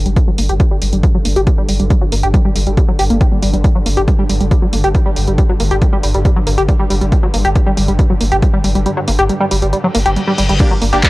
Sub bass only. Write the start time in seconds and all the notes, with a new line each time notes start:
0.06 G1
0.38 G1
0.49 G1
0.82 G1
0.93 G1
1.25 G1
1.36 G1
1.69 G1
1.80 G1
2.12 G1
2.23 G1
2.56 G1
2.67 G1
2.99 G1
3.10 G1
3.42 G1
3.54 G1
3.86 G1
3.97 G1
4.30 G1
4.41 G1
4.73 G1
4.84 G1
5.16 G1
5.27 G1
5.60 G1
5.71 G1
6.03 G1
6.14 G1
6.47 G1
6.58 G1
6.90 G1
7.01 G1
7.34 G1
7.45 G1
7.77 G1
7.88 G1
8.21 G1
8.32 G1
8.64 G1
8.75 G1
9.08 G1
9.19 G1
9.51 G1
9.62 G1
9.95 G1
10.06 G1
10.38 G1
10.49 G1
10.82 G1
10.93 G1